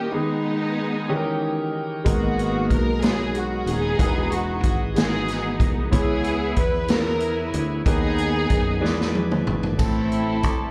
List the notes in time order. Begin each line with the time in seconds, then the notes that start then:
Already playing: D#3 G3 A#3 C#4 D#4 E4 G4 A#4 D#5
0.11 D#3 G#3 B3 D#4 G#4
1.08 C#3 D#3 E3 C#4 D#4 F#4 G4 G#4
1.16 G4 A#4
2.04 G#1 G#2 B2 G#3 A#3 B3 D#4 F#4 G#4 A#4, kick, closed hi-hat
2.09 F#4
2.14 A#4
2.39 closed hi-hat
2.70 B1 A#4, kick, closed hi-hat
3.02 G#3 B3 D#4 F#4 G#4 C#5, snare, closed hi-hat
3.35 F#4, closed hi-hat
3.66 D#1 B3 D#4 G#4, closed hi-hat
3.98 E1 E3 G#3 D#4 F#4 G#4 A#4, kick, closed hi-hat
4.06 B4
4.32 F#4, closed hi-hat
4.63 G#1 F#4, kick, closed hi-hat
4.96 E3 G#3 B3 D#4 F#4 G#4, snare, closed hi-hat
5.28 snare, closed hi-hat
5.60 C2, kick, closed hi-hat
5.91 C#2 C#3 E3 B3 C#4 E4 G#4 C#5, kick, closed hi-hat
6.24 closed hi-hat
6.56 E2 B4, kick, closed hi-hat
6.88 B3 C#4 E4 G#4 A#4 C#5, snare, closed hi-hat
7.20 closed hi-hat
7.54 D2, closed hi-hat
7.85 D#2 D#3 G#3 B3 D#4 G#4, kick, closed hi-hat
8.18 closed hi-hat
8.50 F#2, kick, closed hi-hat
8.80 E2 E3 G#3 B3 G#4 B4 D5
8.85 snare
9.01 snare
9.15 high tom
9.31 mid tom
9.47 G#1, mid tom
9.63 floor tom
9.78 A1 A2 E3 A3 C4 E4 A4, kick, crash, tambourine
10.12 closed hi-hat
10.43 C2, kick, closed hi-hat, tambourine